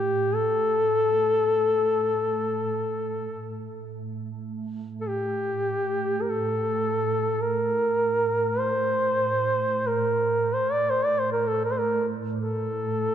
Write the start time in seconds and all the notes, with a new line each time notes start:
Already playing: A2 G4
0.35 A4
3.86 A2
5.01 A4
5.08 G4
6.22 A#4
6.29 A4
7.41 A#4
8.59 C5
9.87 A#4
10.54 C5
10.72 D5
10.90 C5
11.05 D5
11.19 C5
11.32 A#4
11.47 A4
11.65 A#4
11.71 C5
11.79 A#4
12.39 A4